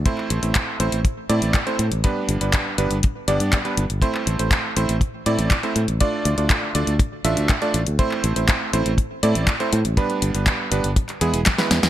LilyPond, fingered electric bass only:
\new Staff \with { instrumentName = "Fingered electric bass" } { \clef bass \time 4/4 \key a \minor \tempo 4 = 121 r8 a,,16 a,,16 r8 a,,16 a,,16 r8 a,16 a,,16 r8 a,16 a,,16 | r8 g,,16 g,,16 r8 g,,16 g,,16 r8 g,,16 g,16 r8 g,,16 g,,16 | r8 a,,16 a,,16 r8 a,,16 a,,16 r8 a,16 a,,16 r8 a,16 a,,16 | r8 d,16 d,16 r8 d,16 d,16 r8 a,,16 d,16 r8 a,,16 d,16 |
r8 a,,16 a,,16 r8 a,,16 a,,16 r8 a,16 a,,16 r8 a,16 a,,16 | r8 g,,16 g,,16 r8 g,,16 g,,16 r8 e,16 e,,16 r8 e,16 e,16 | }